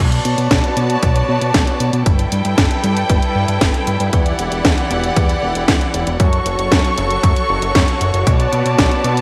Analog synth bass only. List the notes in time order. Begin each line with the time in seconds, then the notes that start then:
0.00 B1
0.25 B2
0.38 B2
0.51 B1
0.77 B2
1.03 B1
1.29 B2
1.42 B2
1.54 B1
1.80 B2
1.93 B2
2.06 G1
2.32 G2
2.45 G2
2.58 G1
2.84 G2
3.10 G1
3.35 G2
3.48 G2
3.61 G1
3.87 G2
4.00 G2
4.13 E2
4.39 E1
4.52 E1
4.65 E2
4.91 E1
5.16 E2
5.42 E1
5.55 E1
5.68 E2
5.94 E1
6.07 E1
6.20 F#2
6.46 F#1
6.59 F#1
6.72 F#2
6.98 F#1
7.23 F#2
7.49 F#1
7.62 F#1
7.75 F#2
8.01 F#1
8.14 F#1
8.27 B1
8.53 B2
8.65 B2
8.79 B1
9.04 B2